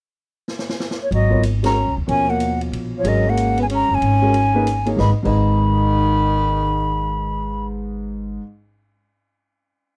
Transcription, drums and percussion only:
0.48 snare medium
0.59 snare medium
0.69 snare medium
0.80 snare medium
0.91 snare medium
1.12 ride soft
1.32 kick soft
1.43 hi-hat pedal medium
1.43 ride medium
1.64 snare medium
1.64 ride medium
2.09 ride soft
2.40 hi-hat pedal medium
2.40 ride medium
2.61 ride soft
2.73 ride medium
3.05 ride medium
3.37 hi-hat pedal medium
3.37 ride medium
3.58 ride soft
3.70 ride medium
4.02 ride medium
4.34 ride medium
4.67 hi-hat pedal medium
4.67 ride medium
4.86 ride soft
4.99 kick medium
4.99 snare medium
5.25 kick soft
5.25 crash medium

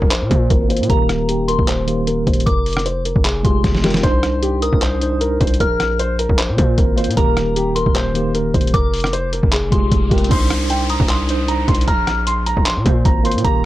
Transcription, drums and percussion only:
0.02 kick loud
0.11 clap loud
0.11 closed hi-hat medium
0.31 kick medium
0.31 closed hi-hat medium
0.50 kick medium
0.50 closed hi-hat medium
0.70 closed hi-hat medium
0.77 closed hi-hat medium
0.83 closed hi-hat medium
0.90 kick loud
0.90 closed hi-hat medium
1.09 cross-stick medium
1.09 closed hi-hat medium
1.29 closed hi-hat medium
1.48 closed hi-hat medium
1.59 kick loud
1.68 clap loud
1.68 closed hi-hat medium
1.88 closed hi-hat medium
2.07 closed hi-hat medium
2.27 kick medium
2.27 closed hi-hat medium
2.33 closed hi-hat medium
2.40 closed hi-hat medium
2.47 kick loud
2.47 closed hi-hat medium
2.66 closed hi-hat medium
2.66 open hi-hat medium
2.73 cross-stick loud
2.73 closed hi-hat medium
2.79 closed hi-hat medium
2.86 closed hi-hat medium
3.05 closed hi-hat medium
3.16 kick medium
3.25 clap loud
3.25 closed hi-hat medium
3.45 kick medium
3.45 closed hi-hat medium
3.64 kick medium
3.64 snare medium
3.64 closed hi-hat medium
3.75 snare medium
3.84 snare medium
3.84 closed hi-hat medium
3.90 snare medium
3.90 closed hi-hat medium
3.97 closed hi-hat medium
4.03 kick loud
4.03 closed hi-hat medium
4.23 cross-stick medium
4.23 closed hi-hat medium
4.43 closed hi-hat medium
4.62 closed hi-hat medium
4.73 kick medium
4.82 clap loud
4.82 closed hi-hat medium
5.01 closed hi-hat medium
5.21 closed hi-hat medium
5.41 kick medium
5.41 closed hi-hat medium
5.47 closed hi-hat medium
5.54 closed hi-hat medium
5.60 kick loud
5.60 closed hi-hat medium
5.80 cross-stick medium
5.80 closed hi-hat medium
5.99 closed hi-hat medium
6.19 closed hi-hat medium
6.29 kick loud
6.39 clap loud
6.39 closed hi-hat medium
6.58 kick medium
6.58 closed hi-hat medium
6.78 kick loud
6.78 closed hi-hat medium
6.98 closed hi-hat medium
7.04 closed hi-hat medium
7.11 closed hi-hat medium
7.17 kick loud
7.17 closed hi-hat medium
7.37 cross-stick medium
7.37 closed hi-hat medium
7.56 closed hi-hat medium
7.76 closed hi-hat medium
7.86 kick medium
7.95 clap loud
7.95 closed hi-hat medium
8.15 closed hi-hat medium
8.35 closed hi-hat medium
8.54 kick medium
8.54 closed hi-hat medium
8.61 closed hi-hat medium
8.67 closed hi-hat medium
8.74 kick loud
8.74 closed hi-hat medium
8.94 closed hi-hat medium
8.94 open hi-hat medium
9.00 cross-stick loud
9.00 closed hi-hat medium
9.07 closed hi-hat medium
9.13 closed hi-hat medium
9.33 closed hi-hat medium
9.43 kick loud
9.52 clap loud
9.52 closed hi-hat medium
9.72 kick loud
9.72 closed hi-hat medium
9.92 kick medium
9.92 closed hi-hat medium
10.11 kick medium
10.11 closed hi-hat medium
10.18 closed hi-hat medium
10.24 closed hi-hat medium
10.31 kick loud
10.31 closed hi-hat medium
10.31 crash loud
10.50 cross-stick medium
10.50 closed hi-hat medium
10.70 closed hi-hat medium
10.90 closed hi-hat medium
11.00 kick loud
11.09 clap loud
11.09 closed hi-hat medium
11.29 closed hi-hat medium
11.48 closed hi-hat medium
11.68 kick medium
11.68 closed hi-hat medium
11.75 closed hi-hat medium
11.81 closed hi-hat medium
11.88 kick loud
11.88 closed hi-hat medium
12.07 cross-stick medium
12.07 closed hi-hat medium
12.27 closed hi-hat medium
12.46 closed hi-hat medium
12.57 kick loud
12.66 clap loud
12.66 closed hi-hat medium
12.86 kick loud
12.86 closed hi-hat medium
13.05 kick loud
13.05 closed hi-hat medium
13.25 closed hi-hat medium
13.31 closed hi-hat medium
13.38 closed hi-hat medium
13.45 kick loud
13.45 closed hi-hat medium

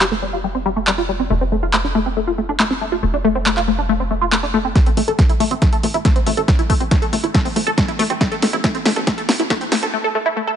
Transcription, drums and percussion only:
0.01 clap loud
0.87 clap loud
1.73 clap loud
2.60 clap loud
3.46 clap loud
3.57 clap soft
4.32 clap loud
4.76 kick loud
4.76 snare soft
4.76 closed hi-hat medium
4.86 closed hi-hat medium
4.97 open hi-hat loud
5.08 closed hi-hat medium
5.19 kick loud
5.19 snare soft
5.19 closed hi-hat medium
5.30 closed hi-hat medium
5.40 open hi-hat loud
5.51 closed hi-hat medium
5.62 kick loud
5.62 snare medium
5.62 closed hi-hat medium
5.73 closed hi-hat medium
5.83 open hi-hat loud
5.94 closed hi-hat medium
6.05 kick loud
6.05 snare medium
6.05 closed hi-hat medium
6.16 closed hi-hat medium
6.27 open hi-hat loud
6.37 closed hi-hat medium
6.48 kick loud
6.48 snare medium
6.48 closed hi-hat medium
6.59 closed hi-hat medium
6.70 kick medium
6.70 open hi-hat loud
6.81 closed hi-hat medium
6.91 kick loud
6.91 snare medium
6.91 closed hi-hat medium
7.02 closed hi-hat medium
7.13 open hi-hat loud
7.24 closed hi-hat medium
7.35 kick loud
7.35 snare medium
7.35 closed hi-hat medium
7.45 open hi-hat medium
7.56 open hi-hat loud
7.67 closed hi-hat medium
7.78 kick loud
7.78 snare medium
7.78 closed hi-hat medium
7.88 closed hi-hat medium
7.99 open hi-hat loud
8.10 closed hi-hat medium
8.21 kick loud
8.21 snare medium
8.21 closed hi-hat medium
8.32 closed hi-hat medium
8.42 snare medium
8.42 open hi-hat loud
8.53 closed hi-hat medium
8.64 kick loud
8.64 snare medium
8.64 closed hi-hat medium
8.75 closed hi-hat medium
8.86 snare medium
8.86 open hi-hat loud
8.96 closed hi-hat medium
9.07 kick loud
9.07 snare medium
9.07 closed hi-hat medium
9.18 closed hi-hat soft
9.29 snare medium
9.29 open hi-hat loud
9.40 closed hi-hat medium
9.50 kick loud
9.50 snare medium
9.50 closed hi-hat medium
9.61 closed hi-hat medium
9.72 snare medium
9.72 open hi-hat loud
9.83 closed hi-hat medium

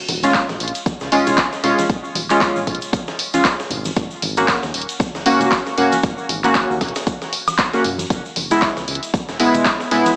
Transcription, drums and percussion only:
0.09 closed hi-hat medium
0.09 open hi-hat loud
0.09 high conga medium
0.23 closed hi-hat medium
0.23 shaker medium
0.34 kick loud
0.34 snare loud
0.34 clap loud
0.34 closed hi-hat medium
0.34 shaker medium
0.49 snare medium
0.49 high conga medium
0.49 shaker soft
0.60 closed hi-hat medium
0.60 open hi-hat medium
0.68 closed hi-hat medium
0.75 closed hi-hat medium
0.75 shaker medium
0.86 kick loud
0.86 closed hi-hat medium
0.86 high conga medium
0.86 shaker medium
1.00 snare soft
1.00 shaker soft
1.12 closed hi-hat medium
1.12 open hi-hat loud
1.27 closed hi-hat medium
1.27 high conga medium
1.27 low conga medium
1.27 shaker medium
1.37 kick loud
1.37 snare loud
1.37 clap loud
1.37 closed hi-hat medium
1.37 open hi-hat medium
1.37 shaker medium
1.52 snare soft
1.52 shaker soft
1.64 snare loud
1.64 closed hi-hat medium
1.64 open hi-hat medium
1.64 low conga medium
1.79 snare soft
1.79 closed hi-hat medium
1.79 high conga medium
1.79 shaker medium
1.90 kick loud
1.90 closed hi-hat medium
2.05 shaker soft
2.15 closed hi-hat medium
2.15 open hi-hat loud
2.15 high conga medium
2.30 snare soft
2.30 clap soft
2.30 closed hi-hat medium
2.30 shaker medium
2.41 kick loud
2.41 snare loud
2.41 clap loud
2.41 closed hi-hat medium
2.41 shaker medium
2.56 high conga medium
2.56 shaker soft
2.67 kick medium
2.67 closed hi-hat medium
2.67 open hi-hat medium
2.67 low conga medium
2.75 closed hi-hat medium
2.82 closed hi-hat medium
2.82 shaker medium
2.92 kick loud
2.92 closed hi-hat medium
2.92 high conga medium
2.92 shaker medium
3.07 snare medium
3.07 shaker soft
3.19 closed hi-hat medium
3.19 open hi-hat loud
3.34 closed hi-hat soft
3.34 high conga medium
3.34 shaker medium
3.45 kick loud
3.45 snare loud
3.45 clap loud
3.45 closed hi-hat medium
3.45 shaker medium
3.60 snare medium
3.60 shaker soft
3.70 closed hi-hat medium
3.70 open hi-hat medium
3.70 low conga medium
3.85 closed hi-hat medium
3.85 high conga loud
3.85 shaker medium
3.96 kick loud
3.96 closed hi-hat medium
3.96 shaker medium
4.11 shaker soft
4.22 closed hi-hat medium
4.22 open hi-hat loud
4.22 high conga medium
4.37 closed hi-hat medium
4.37 shaker medium
4.48 kick loud
4.48 snare loud
4.48 clap loud
4.48 closed hi-hat medium
4.48 shaker medium
4.62 snare medium
4.62 high conga medium
4.62 shaker soft
4.74 closed hi-hat medium
4.74 open hi-hat medium
4.82 closed hi-hat medium
4.89 closed hi-hat soft
4.89 shaker medium
4.99 kick loud
4.99 closed hi-hat medium
4.99 high conga medium
4.99 shaker medium
5.15 snare soft
5.15 shaker soft
5.26 closed hi-hat medium
5.26 open hi-hat loud
5.40 closed hi-hat soft
5.40 high conga medium
5.40 low conga medium
5.40 shaker medium
5.52 kick loud
5.52 snare loud
5.52 clap loud
5.52 closed hi-hat medium
5.52 open hi-hat medium
5.52 shaker medium
5.66 snare soft
5.66 shaker soft
5.78 closed hi-hat medium
5.78 open hi-hat medium
5.78 low conga medium
5.92 closed hi-hat soft
5.92 high conga medium
5.92 shaker medium
6.03 kick loud
6.03 closed hi-hat medium
6.03 shaker medium
6.18 shaker soft
6.29 closed hi-hat medium
6.29 open hi-hat loud
6.29 high conga medium
6.44 clap soft
6.44 closed hi-hat soft
6.44 shaker medium
6.55 kick loud
6.55 snare loud
6.55 clap loud
6.55 closed hi-hat medium
6.55 shaker medium
6.70 high conga medium
6.70 shaker soft
6.81 kick medium
6.81 snare loud
6.81 closed hi-hat medium
6.81 open hi-hat loud
6.81 low conga medium
6.88 closed hi-hat medium
6.96 snare medium
6.96 closed hi-hat soft
6.96 closed hi-hat medium
6.96 shaker medium
7.07 kick loud
7.07 closed hi-hat medium
7.07 high conga medium
7.07 shaker medium
7.22 snare medium
7.22 shaker soft
7.33 closed hi-hat medium
7.33 open hi-hat loud
7.48 closed hi-hat soft
7.48 high conga medium
7.48 high woodblock medium
7.48 shaker medium
7.59 kick loud
7.59 snare loud
7.59 clap loud
7.59 closed hi-hat medium
7.59 shaker medium
7.73 snare medium
7.73 shaker soft
7.84 closed hi-hat medium
7.84 open hi-hat medium
7.84 low conga medium
7.98 closed hi-hat soft
7.98 high conga loud
7.98 shaker medium
8.10 kick loud
8.10 closed hi-hat medium
8.10 shaker medium
8.25 shaker soft
8.36 closed hi-hat medium
8.36 open hi-hat loud
8.36 high conga medium
8.51 closed hi-hat soft
8.51 shaker medium
8.62 kick loud
8.62 snare loud
8.62 clap loud
8.62 closed hi-hat medium
8.62 shaker medium
8.77 snare medium
8.77 high conga medium
8.77 shaker soft
8.88 closed hi-hat medium
8.88 open hi-hat medium
8.95 closed hi-hat medium
9.03 closed hi-hat soft
9.03 shaker medium
9.14 kick loud
9.14 closed hi-hat medium
9.14 high conga medium
9.14 shaker medium
9.29 snare soft
9.29 shaker soft
9.40 closed hi-hat medium
9.40 open hi-hat loud
9.54 closed hi-hat soft
9.54 high conga medium
9.54 low conga medium
9.54 shaker medium
9.65 kick loud
9.65 snare loud
9.65 clap loud
9.65 closed hi-hat medium
9.65 open hi-hat medium
9.65 shaker medium
9.80 snare soft
9.80 shaker soft
9.91 snare loud
9.91 closed hi-hat medium
9.91 open hi-hat medium
9.91 low conga medium
10.06 snare soft
10.06 closed hi-hat soft
10.06 high conga medium
10.06 shaker medium

